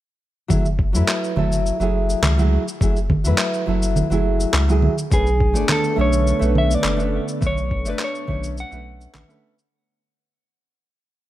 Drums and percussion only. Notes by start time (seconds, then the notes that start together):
0.50 kick, low conga, shaker
0.65 shaker
0.79 kick
0.95 shaker
1.08 clap, shaker
1.24 shaker
1.37 low conga
1.52 shaker
1.66 shaker
1.81 shaker
2.10 shaker
2.24 clap, low conga, shaker
2.39 shaker
2.68 shaker
2.81 kick, shaker
2.96 shaker
3.10 kick, low conga
3.25 shaker
3.38 clap, shaker
3.54 shaker
3.82 shaker
3.96 low conga, shaker
4.11 shaker
4.40 shaker
4.54 clap, shaker
4.69 shaker
4.82 low conga
4.98 shaker
5.12 kick, shaker
5.27 shaker
5.40 kick
5.55 shaker
5.69 clap, low conga, shaker
5.84 shaker
6.13 shaker
6.27 shaker
6.42 shaker
6.55 low conga
6.71 shaker
6.84 clap, shaker
7.00 shaker
7.28 shaker
7.42 kick, low conga, shaker
7.57 shaker
7.71 kick
7.85 shaker
7.99 clap, shaker
8.15 shaker
8.28 kick, low conga
8.43 shaker
8.57 shaker
8.72 shaker
9.01 shaker
9.15 clap, low conga, shaker
9.30 shaker
9.59 shaker